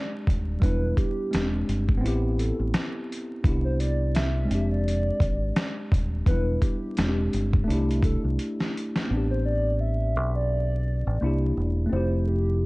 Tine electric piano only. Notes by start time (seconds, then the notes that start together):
Already playing: G#3 C4 D4 G4
0.60 G3 B3 D4
0.65 E4
1.31 G#3 C4 D4
1.36 G4
1.97 B3 C4
2.04 E4 G4
3.43 B3 D4 E4
3.49 G4
4.45 G#3 C4
4.52 D4 G4
6.26 F3 B3 D4
6.31 G3 E4
6.97 G#3 C4 D4
7.03 F4
7.09 G4
7.64 A3 D4
7.71 E4 G4
9.07 B3 C4
9.14 D4 G4
11.21 A#3 D4 E4
11.26 G4
11.86 A3 C4
11.93 E4 G4